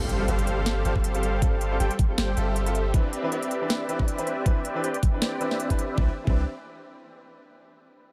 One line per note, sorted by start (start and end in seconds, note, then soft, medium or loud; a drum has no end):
0.00 0.26 G1 loud
0.00 0.26 G3 medium
0.00 0.26 G4 medium
0.00 0.26 A4 medium
0.00 0.26 C5 medium
0.00 0.26 F5 loud
0.00 impact medium
0.09 closed hi-hat medium
0.19 0.29 G3 medium
0.19 0.29 C4 medium
0.19 0.30 F4 medium
0.19 0.30 A4 loud
0.28 0.83 G1 loud
0.28 0.83 G3 medium
0.28 0.83 G4 medium
0.28 0.83 A4 medium
0.28 0.83 C5 medium
0.28 0.83 F5 medium
0.28 closed hi-hat medium
0.39 closed hi-hat medium
0.47 closed hi-hat medium
0.57 0.74 G3 medium
0.57 0.75 C4 medium
0.57 0.75 F4 medium
0.57 0.75 A4 medium
0.66 snare loud
0.66 closed hi-hat medium
0.84 0.94 G1 loud
0.84 1.12 G3 medium
0.84 0.93 G3 medium
0.84 1.12 C4 medium
0.84 1.12 F4 medium
0.84 0.93 G4 medium
0.84 0.93 A4 medium
0.84 1.13 A4 medium
0.84 0.93 C5 medium
0.84 0.93 F5 medium
0.84 closed hi-hat medium
0.96 1.78 G1 medium
0.96 1.78 G3 medium
0.96 1.78 G4 medium
0.96 1.78 A4 medium
0.96 1.78 C5 medium
0.96 1.78 F5 medium
0.96 kick medium
1.04 closed hi-hat medium
1.14 1.24 G3 medium
1.14 1.24 C4 medium
1.14 1.25 F4 medium
1.14 1.25 A4 loud
1.14 closed hi-hat medium
1.23 closed hi-hat medium
1.41 1.53 G3 medium
1.41 1.54 C4 medium
1.41 1.54 F4 medium
1.41 1.54 A4 loud
1.41 kick loud
1.41 closed hi-hat medium
1.61 closed hi-hat medium
1.70 1.81 G3 medium
1.70 1.81 C4 medium
1.70 1.82 F4 medium
1.70 1.82 A4 loud
1.80 1.90 G1 loud
1.80 1.91 G3 medium
1.80 1.91 G4 medium
1.80 1.91 A4 medium
1.80 1.91 C5 medium
1.80 1.91 G5 loud
1.80 closed hi-hat medium
1.91 closed hi-hat medium
1.99 kick loud
1.99 closed hi-hat medium
2.08 2.26 G3 medium
2.08 2.27 C4 medium
2.08 2.27 F4 medium
2.08 2.27 A4 medium
2.18 2.35 G1 loud
2.18 2.35 G3 medium
2.18 2.35 G4 medium
2.18 2.35 A4 medium
2.18 2.35 C5 medium
2.18 2.35 G5 loud
2.18 snare loud
2.18 closed hi-hat medium
2.36 2.92 G1 medium
2.36 2.63 G3 medium
2.36 2.92 G3 medium
2.36 2.64 C4 medium
2.36 2.64 F4 medium
2.36 2.92 G4 medium
2.36 2.92 A4 medium
2.36 2.64 A4 medium
2.36 2.92 C5 medium
2.36 2.92 E5 medium
2.36 closed hi-hat medium
2.56 closed hi-hat medium
2.65 2.76 G3 medium
2.65 2.76 C4 medium
2.65 2.77 F4 medium
2.65 2.77 A4 loud
2.65 closed hi-hat medium
2.75 closed hi-hat medium
2.93 3.05 E3 medium
2.93 3.06 C4 medium
2.93 3.30 C4 medium
2.93 3.06 D4 medium
2.93 3.30 G4 medium
2.93 3.30 B4 medium
2.93 3.06 B4 loud
2.93 3.30 D5 medium
2.93 3.30 E5 loud
2.93 kick loud
2.93 closed hi-hat medium
3.13 closed hi-hat medium
3.22 3.33 E3 medium
3.22 3.33 C4 medium
3.22 3.34 D4 medium
3.22 3.34 B4 loud
3.32 3.87 C4 medium
3.32 3.87 G4 medium
3.32 3.87 B4 medium
3.32 3.87 D5 medium
3.32 3.87 E5 loud
3.32 closed hi-hat medium
3.43 closed hi-hat medium
3.51 closed hi-hat medium
3.60 3.78 E3 medium
3.60 3.78 C4 medium
3.60 3.79 D4 medium
3.60 3.79 B4 medium
3.70 snare loud
3.70 closed hi-hat medium
3.88 4.15 E3 medium
3.88 4.16 C4 medium
3.88 3.97 C4 medium
3.88 4.16 D4 medium
3.88 3.97 G4 medium
3.88 3.97 B4 medium
3.88 4.16 B4 medium
3.88 3.97 D5 medium
3.88 3.97 E5 medium
3.88 closed hi-hat medium
3.99 4.82 C4 medium
3.99 4.82 G4 medium
3.99 4.82 B4 medium
3.99 4.82 D5 medium
3.99 4.82 E5 medium
3.99 kick medium
4.08 closed hi-hat medium
4.17 4.28 E3 medium
4.17 4.28 C4 medium
4.17 4.29 D4 medium
4.17 4.29 B4 loud
4.17 closed hi-hat medium
4.27 closed hi-hat medium
4.45 4.57 E3 medium
4.45 4.57 C4 medium
4.45 4.58 D4 medium
4.45 4.58 B4 loud
4.45 kick loud
4.45 closed hi-hat medium
4.65 closed hi-hat medium
4.74 4.85 E3 medium
4.74 4.85 C4 medium
4.74 4.85 D4 medium
4.74 4.86 B4 loud
4.84 4.95 C4 medium
4.84 4.95 G4 medium
4.84 4.95 B4 medium
4.84 4.95 D5 medium
4.84 4.95 G5 loud
4.84 closed hi-hat medium
4.94 closed hi-hat medium
5.03 kick loud
5.03 closed hi-hat medium
5.12 5.30 E3 medium
5.12 5.30 C4 medium
5.12 5.31 D4 medium
5.12 5.31 B4 medium
5.22 5.39 C4 medium
5.22 5.39 G4 medium
5.22 5.39 B4 medium
5.22 5.39 D5 medium
5.22 5.39 G5 loud
5.22 snare loud
5.22 closed hi-hat medium
5.40 5.67 E3 medium
5.40 5.68 C4 medium
5.40 5.77 C4 medium
5.40 5.68 D4 medium
5.40 5.77 G4 medium
5.40 5.77 B4 medium
5.40 5.68 B4 medium
5.40 5.77 D5 medium
5.40 5.77 E5 medium
5.40 closed hi-hat medium
5.51 snare soft
5.60 closed hi-hat medium
5.69 5.80 E3 medium
5.69 5.80 C4 medium
5.69 5.80 D4 medium
5.69 5.81 B4 loud
5.69 kick medium
5.69 closed hi-hat medium
5.79 5.96 C4 medium
5.79 5.96 G4 medium
5.79 5.96 B4 medium
5.79 5.96 D5 medium
5.79 5.96 E5 loud
5.79 closed hi-hat medium
5.95 6.09 C2 loud
5.95 6.07 E3 medium
5.95 6.09 C4 medium
5.95 6.09 G4 medium
5.95 6.09 B4 medium
5.95 6.09 D5 medium
5.95 6.09 E5 loud
5.95 kick loud
5.99 6.10 D4 medium
5.99 6.11 B4 medium
6.24 6.45 C2 loud
6.24 6.39 E3 medium
6.24 6.40 C4 medium
6.24 6.41 C4 medium
6.24 6.41 G4 medium
6.24 6.41 B4 medium
6.24 6.41 D5 medium
6.24 6.41 E5 medium
6.24 kick loud
6.28 6.41 D4 medium
6.28 6.42 B4 medium